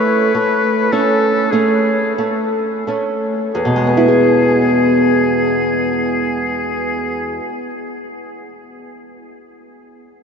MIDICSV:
0, 0, Header, 1, 3, 480
1, 0, Start_track
1, 0, Key_signature, 4, "major"
1, 0, Tempo, 1140684
1, 384, Tempo, 1244813
1, 864, Tempo, 1379310
1, 1343, Time_signature, 12, 3, 24, 8
1, 1344, Tempo, 1295896
1, 2784, Tempo, 1327434
1, 3799, End_track
2, 0, Start_track
2, 0, Title_t, "Oboe"
2, 0, Program_c, 0, 68
2, 0, Note_on_c, 0, 71, 60
2, 388, Note_on_c, 0, 69, 55
2, 394, Note_off_c, 0, 71, 0
2, 615, Note_on_c, 0, 68, 49
2, 621, Note_off_c, 0, 69, 0
2, 863, Note_off_c, 0, 68, 0
2, 1345, Note_on_c, 0, 68, 39
2, 2767, Note_off_c, 0, 68, 0
2, 3799, End_track
3, 0, Start_track
3, 0, Title_t, "Nylon-string guitar"
3, 0, Program_c, 1, 24
3, 0, Note_on_c, 1, 57, 41
3, 141, Note_off_c, 1, 57, 0
3, 146, Note_on_c, 1, 57, 37
3, 369, Note_off_c, 1, 57, 0
3, 388, Note_on_c, 1, 57, 34
3, 390, Note_on_c, 1, 61, 40
3, 603, Note_off_c, 1, 57, 0
3, 603, Note_off_c, 1, 61, 0
3, 620, Note_on_c, 1, 57, 33
3, 622, Note_on_c, 1, 61, 33
3, 850, Note_off_c, 1, 57, 0
3, 851, Note_off_c, 1, 61, 0
3, 873, Note_on_c, 1, 57, 31
3, 1096, Note_off_c, 1, 57, 0
3, 1113, Note_on_c, 1, 57, 25
3, 1116, Note_on_c, 1, 61, 28
3, 1333, Note_off_c, 1, 57, 0
3, 1335, Note_off_c, 1, 61, 0
3, 1348, Note_on_c, 1, 40, 35
3, 1386, Note_on_c, 1, 47, 28
3, 1427, Note_on_c, 1, 56, 30
3, 1467, Note_on_c, 1, 59, 29
3, 1505, Note_on_c, 1, 64, 30
3, 1546, Note_on_c, 1, 68, 31
3, 2770, Note_off_c, 1, 40, 0
3, 2808, Note_off_c, 1, 47, 0
3, 2848, Note_off_c, 1, 56, 0
3, 2887, Note_off_c, 1, 59, 0
3, 2924, Note_off_c, 1, 64, 0
3, 2964, Note_off_c, 1, 68, 0
3, 3799, End_track
0, 0, End_of_file